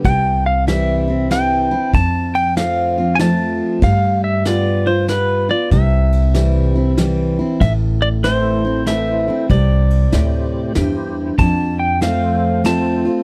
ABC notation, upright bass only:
X:1
M:3/4
L:1/8
Q:"Swing" 1/4=95
K:C
V:1 name="Upright bass" clef=bass
C,,6 | F,,6 | G,,6 | C,,6 |
A,,,6 | C,,2 D,,2 E,,2 | F,,6 |]